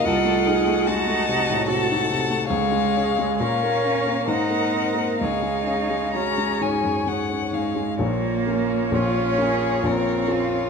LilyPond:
<<
  \new Staff \with { instrumentName = "Violin" } { \time 3/4 \key des \major \tempo 4 = 66 ges''4 a''4 a''4 | f''4 f''4 ges''4 | f''4 bes''8 aes''8 ges''8 f''8 | \key bes \minor des''2. | }
  \new Staff \with { instrumentName = "Violin" } { \time 3/4 \key des \major ees''4 ges''4 ges''4 | des''4 des''4 c''4 | des''4 des''4.~ des''16 r16 | \key bes \minor r4 f'8 aes'8 bes'8 f'8 | }
  \new Staff \with { instrumentName = "Viola" } { \time 3/4 \key des \major a'8 aes'8 ges'8 ges'8 a'4 | aes'4 bes'4 bes'4 | aes'4 aes'4.~ aes'16 r16 | \key bes \minor f'2. | }
  \new Staff \with { instrumentName = "Cello" } { \time 3/4 \key des \major f'4 ees'4 ges'8 r8 | aes4 des'4 ees'4 | ees'4 des'4 r8 aes8 | \key bes \minor bes4 des'4 c'4 | }
  \new Staff \with { instrumentName = "Grand piano" } { \clef bass \time 3/4 \key des \major c,16 a16 ees'16 a16 aes16 a16 c16 a,16 c16 ees'16 c16 a16 | des,16 aes16 des'16 aes16 bes,16 bes16 des'16 bes16 aes,16 bes16 c'16 bes16 | des,16 aes16 des'16 aes16 ges16 aes16 aes,16 ges,16 aes,16 des'16 aes,16 aes16 | \key bes \minor <bes,, bes,>8 <bes des' f'>8 <bes,, bes,>8 <bes des' f'>8 <bes,, bes,>8 <bes des' f'>8 | }
>>